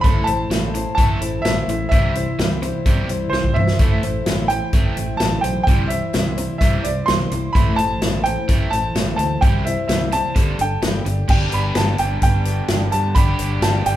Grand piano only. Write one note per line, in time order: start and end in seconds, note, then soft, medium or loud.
0.01 0.27 B5 medium
0.24 0.93 A5 medium
0.95 1.45 A5 medium
1.42 1.87 E5 medium
1.89 3.36 E5 medium
3.30 3.56 C5 medium
3.54 4.52 E5 medium
4.48 5.22 G5 loud
5.17 5.43 A5 medium
5.41 5.62 G5 medium
5.63 5.87 G5 medium
5.88 6.57 E5 medium
6.58 6.84 E5 medium
6.84 7.06 D5 medium
7.06 7.55 C6 medium
7.53 7.78 B5 medium
7.76 8.26 A5 loud
8.24 8.68 G5 medium
8.70 9.15 A5 medium
9.16 9.39 A5 medium
9.41 9.66 G5 medium
9.65 9.86 E5 medium
9.88 10.13 E5 medium
10.13 10.79 A5 medium
10.61 11.28 G5 medium
11.30 11.52 G5 medium
11.54 11.78 B5 medium
11.77 11.99 A5 medium
11.99 12.21 G5 medium
12.23 12.96 G5 medium
12.92 13.17 A5 medium
13.15 13.64 B5 medium
13.63 13.87 A5 medium
13.86 13.96 G5 medium